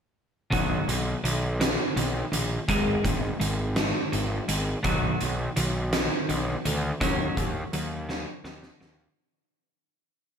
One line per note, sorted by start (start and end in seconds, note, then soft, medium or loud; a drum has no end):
0.51 0.78 B1 medium
0.51 0.85 B2 medium
0.51 0.85 D#3 medium
0.51 0.86 F#3 medium
0.51 kick medium
0.51 closed hi-hat medium
0.88 1.13 B1 medium
0.88 1.20 B2 medium
0.88 1.21 D#3 medium
0.88 closed hi-hat medium
1.24 1.75 B1 medium
1.24 1.56 B2 medium
1.24 1.56 D#3 medium
1.24 closed hi-hat medium
1.60 1.92 B2 medium
1.60 1.93 D#3 medium
1.60 snare medium
1.60 closed hi-hat medium
1.96 2.22 B1 medium
1.96 2.29 B2 medium
1.96 2.29 D#3 medium
1.96 closed hi-hat medium
2.32 2.58 A#1 medium
2.32 2.64 B2 medium
2.32 2.64 D#3 medium
2.32 closed hi-hat medium
2.68 2.94 G#1 medium
2.68 3.02 G#2 medium
2.68 3.02 D#3 medium
2.68 3.03 G#3 medium
2.68 kick medium
2.68 closed hi-hat medium
3.04 3.30 G#1 medium
3.04 3.36 G#2 medium
3.04 3.36 D#3 medium
3.04 kick medium
3.04 closed hi-hat medium
3.40 3.92 G#1 medium
3.40 3.72 G#2 medium
3.40 3.73 D#3 medium
3.40 closed hi-hat medium
3.76 4.09 G#2 medium
3.76 4.09 D#3 medium
3.76 snare medium
3.76 closed hi-hat medium
4.12 4.39 G#1 medium
4.12 4.45 G#2 medium
4.12 4.45 D#3 medium
4.12 closed hi-hat medium
4.48 4.74 G#1 medium
4.48 4.81 G#2 medium
4.48 4.81 D#3 medium
4.48 closed hi-hat medium
4.83 5.10 B1 medium
4.83 5.18 B2 medium
4.83 5.18 D#3 medium
4.83 5.18 F#3 medium
4.83 kick medium
4.83 closed hi-hat medium
5.21 5.47 B1 medium
5.21 5.53 B2 medium
5.21 5.53 D#3 medium
5.21 closed hi-hat medium
5.56 6.08 B1 medium
5.56 5.89 B2 medium
5.56 5.89 D#3 medium
5.56 closed hi-hat medium
5.93 6.25 B2 medium
5.93 6.25 D#3 medium
5.93 snare loud
5.93 closed hi-hat medium
6.29 6.55 B1 medium
6.29 6.61 B2 medium
6.29 6.61 D#3 medium
6.29 closed hi-hat medium
6.65 6.91 D2 medium
6.65 6.97 B2 medium
6.65 6.97 D#3 medium
6.65 closed hi-hat medium
7.01 7.26 D#2 medium
7.01 7.34 D#3 medium
7.01 7.35 F#3 medium
7.01 7.35 C#4 medium
7.01 kick medium
7.01 closed hi-hat medium
7.37 7.62 D#2 medium
7.37 7.69 D#3 medium
7.37 7.69 F#3 medium
7.37 kick medium
7.37 closed hi-hat medium
7.73 8.24 D#2 medium
7.73 8.05 D#3 medium
7.73 8.06 F#3 medium
7.73 closed hi-hat medium
8.09 8.41 D#3 medium
8.09 8.41 F#3 medium
8.09 snare soft
8.44 8.70 D#2 medium
8.44 8.77 D#3 medium
8.44 8.77 F#3 medium
8.44 snare medium
8.63 snare medium
8.81 9.07 D#2 medium
8.81 9.13 D#3 medium
8.81 9.13 F#3 medium
8.81 snare medium